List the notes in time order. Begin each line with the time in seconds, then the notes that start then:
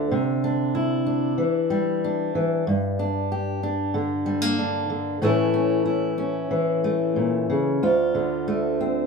Already playing: D3 D4
0.11 C3
0.44 D4
0.75 E4
1.06 D4
1.38 E3
1.70 G3
2.04 D4
2.35 E3
2.67 G2
2.99 D4
3.32 G4
3.63 D4
3.94 D3
4.26 G3
4.42 A#3
4.59 D4
4.90 D3
5.22 A2 E3 A3 C#4 E4
5.54 C#4
5.86 E4
6.18 C#4
6.51 E3
6.84 A3
7.16 A#2
7.50 C#3
7.83 D2 F4
8.15 D3
8.48 A3
8.81 C4